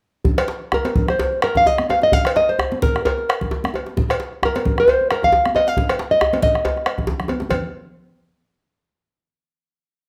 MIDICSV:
0, 0, Header, 1, 5, 480
1, 0, Start_track
1, 0, Tempo, 467654
1, 255, Time_signature, 4, 2, 24, 8
1, 3612, Tempo, 450450
1, 6012, Tempo, 431344
1, 8412, Tempo, 411523
1, 10922, End_track
2, 0, Start_track
2, 0, Title_t, "Nylon-string guitar"
2, 0, Program_c, 0, 24
2, 761, Note_on_c, 0, 70, 80
2, 1124, Note_off_c, 0, 70, 0
2, 1128, Note_on_c, 0, 72, 81
2, 1471, Note_off_c, 0, 72, 0
2, 1475, Note_on_c, 0, 70, 80
2, 1606, Note_off_c, 0, 70, 0
2, 1614, Note_on_c, 0, 77, 94
2, 1712, Note_off_c, 0, 77, 0
2, 1712, Note_on_c, 0, 75, 90
2, 1949, Note_off_c, 0, 75, 0
2, 1954, Note_on_c, 0, 77, 85
2, 2083, Note_off_c, 0, 77, 0
2, 2087, Note_on_c, 0, 75, 81
2, 2189, Note_off_c, 0, 75, 0
2, 2189, Note_on_c, 0, 77, 92
2, 2424, Note_off_c, 0, 77, 0
2, 2428, Note_on_c, 0, 75, 91
2, 2556, Note_on_c, 0, 72, 78
2, 2561, Note_off_c, 0, 75, 0
2, 2897, Note_off_c, 0, 72, 0
2, 2902, Note_on_c, 0, 70, 78
2, 3122, Note_off_c, 0, 70, 0
2, 3133, Note_on_c, 0, 70, 70
2, 3809, Note_off_c, 0, 70, 0
2, 4608, Note_on_c, 0, 70, 82
2, 4971, Note_off_c, 0, 70, 0
2, 4975, Note_on_c, 0, 72, 79
2, 5309, Note_off_c, 0, 72, 0
2, 5313, Note_on_c, 0, 70, 79
2, 5429, Note_off_c, 0, 70, 0
2, 5449, Note_on_c, 0, 77, 93
2, 5779, Note_off_c, 0, 77, 0
2, 5783, Note_on_c, 0, 75, 82
2, 5912, Note_off_c, 0, 75, 0
2, 5912, Note_on_c, 0, 77, 91
2, 6386, Note_off_c, 0, 77, 0
2, 6390, Note_on_c, 0, 75, 84
2, 6734, Note_off_c, 0, 75, 0
2, 6747, Note_on_c, 0, 75, 78
2, 7422, Note_off_c, 0, 75, 0
2, 10922, End_track
3, 0, Start_track
3, 0, Title_t, "Bombo"
3, 254, Note_on_c, 9, 43, 88
3, 356, Note_off_c, 9, 43, 0
3, 392, Note_on_c, 9, 37, 66
3, 495, Note_off_c, 9, 37, 0
3, 738, Note_on_c, 9, 37, 82
3, 840, Note_off_c, 9, 37, 0
3, 980, Note_on_c, 9, 43, 99
3, 1083, Note_off_c, 9, 43, 0
3, 1113, Note_on_c, 9, 37, 69
3, 1216, Note_off_c, 9, 37, 0
3, 1460, Note_on_c, 9, 37, 97
3, 1563, Note_off_c, 9, 37, 0
3, 1590, Note_on_c, 9, 37, 31
3, 1590, Note_on_c, 9, 43, 71
3, 1692, Note_off_c, 9, 37, 0
3, 1692, Note_off_c, 9, 43, 0
3, 1831, Note_on_c, 9, 37, 77
3, 1934, Note_off_c, 9, 37, 0
3, 2176, Note_on_c, 9, 43, 92
3, 2279, Note_off_c, 9, 43, 0
3, 2309, Note_on_c, 9, 37, 72
3, 2412, Note_off_c, 9, 37, 0
3, 2663, Note_on_c, 9, 37, 92
3, 2766, Note_off_c, 9, 37, 0
3, 2903, Note_on_c, 9, 43, 103
3, 3006, Note_off_c, 9, 43, 0
3, 3036, Note_on_c, 9, 37, 69
3, 3139, Note_off_c, 9, 37, 0
3, 3385, Note_on_c, 9, 37, 98
3, 3488, Note_off_c, 9, 37, 0
3, 3516, Note_on_c, 9, 37, 28
3, 3516, Note_on_c, 9, 43, 72
3, 3618, Note_off_c, 9, 37, 0
3, 3618, Note_off_c, 9, 43, 0
3, 3751, Note_on_c, 9, 37, 81
3, 3858, Note_off_c, 9, 37, 0
3, 4102, Note_on_c, 9, 43, 107
3, 4209, Note_off_c, 9, 43, 0
3, 4233, Note_on_c, 9, 37, 74
3, 4339, Note_off_c, 9, 37, 0
3, 4584, Note_on_c, 9, 37, 91
3, 4691, Note_off_c, 9, 37, 0
3, 4828, Note_on_c, 9, 43, 94
3, 4934, Note_off_c, 9, 43, 0
3, 4955, Note_on_c, 9, 37, 68
3, 5061, Note_off_c, 9, 37, 0
3, 5302, Note_on_c, 9, 37, 94
3, 5409, Note_off_c, 9, 37, 0
3, 5438, Note_on_c, 9, 37, 30
3, 5438, Note_on_c, 9, 43, 70
3, 5544, Note_off_c, 9, 37, 0
3, 5544, Note_off_c, 9, 43, 0
3, 5675, Note_on_c, 9, 37, 76
3, 5781, Note_off_c, 9, 37, 0
3, 6008, Note_on_c, 9, 43, 90
3, 6119, Note_off_c, 9, 43, 0
3, 6149, Note_on_c, 9, 37, 70
3, 6260, Note_off_c, 9, 37, 0
3, 6502, Note_on_c, 9, 37, 91
3, 6613, Note_off_c, 9, 37, 0
3, 6746, Note_on_c, 9, 43, 91
3, 6857, Note_off_c, 9, 43, 0
3, 6882, Note_on_c, 9, 37, 65
3, 6994, Note_off_c, 9, 37, 0
3, 7128, Note_on_c, 9, 37, 26
3, 7224, Note_off_c, 9, 37, 0
3, 7224, Note_on_c, 9, 37, 81
3, 7336, Note_off_c, 9, 37, 0
3, 7356, Note_on_c, 9, 37, 27
3, 7356, Note_on_c, 9, 43, 65
3, 7467, Note_off_c, 9, 37, 0
3, 7467, Note_off_c, 9, 43, 0
3, 7598, Note_on_c, 9, 37, 65
3, 7709, Note_off_c, 9, 37, 0
3, 7937, Note_on_c, 9, 43, 75
3, 8048, Note_off_c, 9, 43, 0
3, 10922, End_track
4, 0, Start_track
4, 0, Title_t, "Djembe"
4, 251, Note_on_c, 9, 64, 68
4, 354, Note_off_c, 9, 64, 0
4, 390, Note_on_c, 9, 63, 56
4, 492, Note_on_c, 9, 62, 75
4, 493, Note_off_c, 9, 63, 0
4, 595, Note_off_c, 9, 62, 0
4, 633, Note_on_c, 9, 62, 22
4, 736, Note_off_c, 9, 62, 0
4, 745, Note_on_c, 9, 63, 66
4, 745, Note_on_c, 9, 64, 71
4, 847, Note_off_c, 9, 63, 0
4, 847, Note_off_c, 9, 64, 0
4, 875, Note_on_c, 9, 62, 59
4, 978, Note_off_c, 9, 62, 0
4, 1114, Note_on_c, 9, 63, 56
4, 1217, Note_off_c, 9, 63, 0
4, 1226, Note_on_c, 9, 62, 70
4, 1226, Note_on_c, 9, 64, 71
4, 1328, Note_off_c, 9, 62, 0
4, 1328, Note_off_c, 9, 64, 0
4, 1601, Note_on_c, 9, 63, 51
4, 1704, Note_off_c, 9, 63, 0
4, 1707, Note_on_c, 9, 62, 61
4, 1707, Note_on_c, 9, 64, 65
4, 1810, Note_off_c, 9, 62, 0
4, 1810, Note_off_c, 9, 64, 0
4, 1946, Note_on_c, 9, 63, 73
4, 2048, Note_off_c, 9, 63, 0
4, 2070, Note_on_c, 9, 62, 46
4, 2172, Note_off_c, 9, 62, 0
4, 2177, Note_on_c, 9, 64, 68
4, 2279, Note_off_c, 9, 64, 0
4, 2313, Note_on_c, 9, 63, 56
4, 2416, Note_off_c, 9, 63, 0
4, 2421, Note_on_c, 9, 62, 69
4, 2524, Note_off_c, 9, 62, 0
4, 2657, Note_on_c, 9, 63, 60
4, 2657, Note_on_c, 9, 64, 58
4, 2759, Note_off_c, 9, 63, 0
4, 2759, Note_off_c, 9, 64, 0
4, 2788, Note_on_c, 9, 62, 50
4, 2890, Note_off_c, 9, 62, 0
4, 3032, Note_on_c, 9, 63, 54
4, 3134, Note_off_c, 9, 63, 0
4, 3136, Note_on_c, 9, 62, 72
4, 3136, Note_on_c, 9, 64, 67
4, 3238, Note_off_c, 9, 62, 0
4, 3238, Note_off_c, 9, 64, 0
4, 3504, Note_on_c, 9, 63, 44
4, 3605, Note_on_c, 9, 62, 67
4, 3605, Note_on_c, 9, 64, 61
4, 3607, Note_off_c, 9, 63, 0
4, 3712, Note_off_c, 9, 62, 0
4, 3712, Note_off_c, 9, 64, 0
4, 3845, Note_on_c, 9, 63, 66
4, 3952, Note_off_c, 9, 63, 0
4, 3980, Note_on_c, 9, 62, 50
4, 4086, Note_off_c, 9, 62, 0
4, 4091, Note_on_c, 9, 64, 66
4, 4198, Note_off_c, 9, 64, 0
4, 4221, Note_on_c, 9, 63, 49
4, 4328, Note_off_c, 9, 63, 0
4, 4335, Note_on_c, 9, 62, 64
4, 4442, Note_off_c, 9, 62, 0
4, 4472, Note_on_c, 9, 62, 20
4, 4579, Note_off_c, 9, 62, 0
4, 4579, Note_on_c, 9, 63, 66
4, 4579, Note_on_c, 9, 64, 60
4, 4686, Note_off_c, 9, 63, 0
4, 4686, Note_off_c, 9, 64, 0
4, 4714, Note_on_c, 9, 62, 55
4, 4821, Note_off_c, 9, 62, 0
4, 4957, Note_on_c, 9, 63, 48
4, 5059, Note_on_c, 9, 62, 64
4, 5059, Note_on_c, 9, 64, 67
4, 5064, Note_off_c, 9, 63, 0
4, 5165, Note_off_c, 9, 62, 0
4, 5165, Note_off_c, 9, 64, 0
4, 5429, Note_on_c, 9, 63, 44
4, 5535, Note_off_c, 9, 63, 0
4, 5536, Note_on_c, 9, 62, 70
4, 5536, Note_on_c, 9, 64, 67
4, 5643, Note_off_c, 9, 62, 0
4, 5643, Note_off_c, 9, 64, 0
4, 5772, Note_on_c, 9, 63, 73
4, 5879, Note_off_c, 9, 63, 0
4, 5905, Note_on_c, 9, 62, 48
4, 6011, Note_off_c, 9, 62, 0
4, 6011, Note_on_c, 9, 64, 63
4, 6122, Note_off_c, 9, 64, 0
4, 6149, Note_on_c, 9, 62, 21
4, 6149, Note_on_c, 9, 63, 54
4, 6259, Note_off_c, 9, 62, 0
4, 6259, Note_on_c, 9, 62, 76
4, 6260, Note_off_c, 9, 63, 0
4, 6370, Note_off_c, 9, 62, 0
4, 6506, Note_on_c, 9, 63, 68
4, 6506, Note_on_c, 9, 64, 63
4, 6617, Note_off_c, 9, 63, 0
4, 6617, Note_off_c, 9, 64, 0
4, 6641, Note_on_c, 9, 62, 52
4, 6752, Note_off_c, 9, 62, 0
4, 6877, Note_on_c, 9, 62, 22
4, 6877, Note_on_c, 9, 63, 52
4, 6988, Note_off_c, 9, 62, 0
4, 6988, Note_off_c, 9, 63, 0
4, 6991, Note_on_c, 9, 62, 69
4, 6991, Note_on_c, 9, 64, 72
4, 7103, Note_off_c, 9, 62, 0
4, 7103, Note_off_c, 9, 64, 0
4, 7362, Note_on_c, 9, 63, 50
4, 7459, Note_on_c, 9, 62, 73
4, 7459, Note_on_c, 9, 64, 73
4, 7474, Note_off_c, 9, 63, 0
4, 7570, Note_off_c, 9, 62, 0
4, 7570, Note_off_c, 9, 64, 0
4, 7594, Note_on_c, 9, 62, 22
4, 7692, Note_off_c, 9, 62, 0
4, 7692, Note_on_c, 9, 62, 24
4, 7692, Note_on_c, 9, 63, 79
4, 7804, Note_off_c, 9, 62, 0
4, 7804, Note_off_c, 9, 63, 0
4, 7824, Note_on_c, 9, 62, 57
4, 7930, Note_on_c, 9, 64, 68
4, 7935, Note_off_c, 9, 62, 0
4, 8041, Note_off_c, 9, 64, 0
4, 10922, End_track
5, 0, Start_track
5, 0, Title_t, "Drums"
5, 256, Note_on_c, 9, 64, 59
5, 359, Note_off_c, 9, 64, 0
5, 390, Note_on_c, 9, 56, 68
5, 493, Note_off_c, 9, 56, 0
5, 869, Note_on_c, 9, 63, 50
5, 872, Note_on_c, 9, 56, 46
5, 972, Note_off_c, 9, 63, 0
5, 975, Note_off_c, 9, 56, 0
5, 981, Note_on_c, 9, 63, 23
5, 981, Note_on_c, 9, 64, 63
5, 1084, Note_off_c, 9, 63, 0
5, 1084, Note_off_c, 9, 64, 0
5, 1109, Note_on_c, 9, 63, 20
5, 1211, Note_off_c, 9, 63, 0
5, 1227, Note_on_c, 9, 56, 46
5, 1329, Note_off_c, 9, 56, 0
5, 1359, Note_on_c, 9, 63, 19
5, 1462, Note_off_c, 9, 63, 0
5, 1463, Note_on_c, 9, 56, 49
5, 1565, Note_off_c, 9, 56, 0
5, 1597, Note_on_c, 9, 64, 57
5, 1700, Note_off_c, 9, 64, 0
5, 1838, Note_on_c, 9, 63, 56
5, 1940, Note_off_c, 9, 63, 0
5, 1950, Note_on_c, 9, 56, 49
5, 2053, Note_off_c, 9, 56, 0
5, 2078, Note_on_c, 9, 63, 22
5, 2181, Note_off_c, 9, 63, 0
5, 2187, Note_on_c, 9, 64, 65
5, 2289, Note_off_c, 9, 64, 0
5, 2326, Note_on_c, 9, 56, 66
5, 2428, Note_off_c, 9, 56, 0
5, 2791, Note_on_c, 9, 63, 59
5, 2894, Note_off_c, 9, 63, 0
5, 2897, Note_on_c, 9, 63, 21
5, 2897, Note_on_c, 9, 64, 71
5, 2999, Note_off_c, 9, 63, 0
5, 2999, Note_off_c, 9, 64, 0
5, 3029, Note_on_c, 9, 63, 23
5, 3132, Note_off_c, 9, 63, 0
5, 3148, Note_on_c, 9, 56, 48
5, 3251, Note_off_c, 9, 56, 0
5, 3266, Note_on_c, 9, 63, 21
5, 3369, Note_off_c, 9, 63, 0
5, 3381, Note_on_c, 9, 56, 51
5, 3483, Note_off_c, 9, 56, 0
5, 3503, Note_on_c, 9, 64, 53
5, 3606, Note_off_c, 9, 64, 0
5, 3741, Note_on_c, 9, 63, 56
5, 3848, Note_off_c, 9, 63, 0
5, 3863, Note_on_c, 9, 56, 45
5, 3969, Note_off_c, 9, 56, 0
5, 3992, Note_on_c, 9, 63, 23
5, 4095, Note_on_c, 9, 64, 64
5, 4099, Note_off_c, 9, 63, 0
5, 4202, Note_off_c, 9, 64, 0
5, 4239, Note_on_c, 9, 56, 63
5, 4345, Note_off_c, 9, 56, 0
5, 4719, Note_on_c, 9, 56, 50
5, 4719, Note_on_c, 9, 63, 55
5, 4822, Note_off_c, 9, 63, 0
5, 4822, Note_on_c, 9, 63, 23
5, 4822, Note_on_c, 9, 64, 72
5, 4825, Note_off_c, 9, 56, 0
5, 4928, Note_off_c, 9, 63, 0
5, 4928, Note_off_c, 9, 64, 0
5, 4958, Note_on_c, 9, 63, 23
5, 5065, Note_off_c, 9, 63, 0
5, 5075, Note_on_c, 9, 56, 47
5, 5181, Note_off_c, 9, 56, 0
5, 5201, Note_on_c, 9, 63, 21
5, 5307, Note_off_c, 9, 63, 0
5, 5312, Note_on_c, 9, 56, 45
5, 5418, Note_off_c, 9, 56, 0
5, 5444, Note_on_c, 9, 64, 54
5, 5551, Note_off_c, 9, 64, 0
5, 5679, Note_on_c, 9, 63, 54
5, 5785, Note_off_c, 9, 63, 0
5, 5789, Note_on_c, 9, 56, 45
5, 5895, Note_off_c, 9, 56, 0
5, 5911, Note_on_c, 9, 63, 22
5, 6016, Note_on_c, 9, 64, 67
5, 6018, Note_off_c, 9, 63, 0
5, 6128, Note_off_c, 9, 64, 0
5, 6149, Note_on_c, 9, 63, 22
5, 6151, Note_on_c, 9, 56, 61
5, 6259, Note_off_c, 9, 63, 0
5, 6259, Note_on_c, 9, 63, 23
5, 6263, Note_off_c, 9, 56, 0
5, 6370, Note_off_c, 9, 63, 0
5, 6390, Note_on_c, 9, 63, 20
5, 6501, Note_off_c, 9, 63, 0
5, 6635, Note_on_c, 9, 63, 55
5, 6639, Note_on_c, 9, 56, 43
5, 6739, Note_off_c, 9, 63, 0
5, 6739, Note_on_c, 9, 63, 21
5, 6739, Note_on_c, 9, 64, 69
5, 6750, Note_off_c, 9, 56, 0
5, 6850, Note_off_c, 9, 63, 0
5, 6850, Note_off_c, 9, 64, 0
5, 6987, Note_on_c, 9, 56, 46
5, 7098, Note_off_c, 9, 56, 0
5, 7116, Note_on_c, 9, 63, 21
5, 7227, Note_off_c, 9, 63, 0
5, 7227, Note_on_c, 9, 63, 22
5, 7229, Note_on_c, 9, 56, 44
5, 7338, Note_off_c, 9, 63, 0
5, 7340, Note_off_c, 9, 56, 0
5, 7362, Note_on_c, 9, 64, 50
5, 7469, Note_off_c, 9, 64, 0
5, 7469, Note_on_c, 9, 64, 41
5, 7580, Note_off_c, 9, 64, 0
5, 7602, Note_on_c, 9, 64, 47
5, 7704, Note_on_c, 9, 56, 40
5, 7708, Note_on_c, 9, 63, 48
5, 7713, Note_off_c, 9, 64, 0
5, 7815, Note_off_c, 9, 56, 0
5, 7820, Note_off_c, 9, 63, 0
5, 7845, Note_on_c, 9, 63, 53
5, 7941, Note_on_c, 9, 56, 72
5, 7945, Note_on_c, 9, 64, 66
5, 7956, Note_off_c, 9, 63, 0
5, 8052, Note_off_c, 9, 56, 0
5, 8056, Note_off_c, 9, 64, 0
5, 10922, End_track
0, 0, End_of_file